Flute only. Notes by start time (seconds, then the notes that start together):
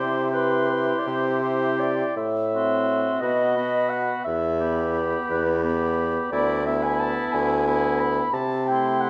Already playing: C6
0.32 C6
1.42 C6
2.55 C6
3.23 B5
3.56 B5
4.61 B5
5.64 B5
6.34 B5
6.67 B5
7.69 B5
8.71 C6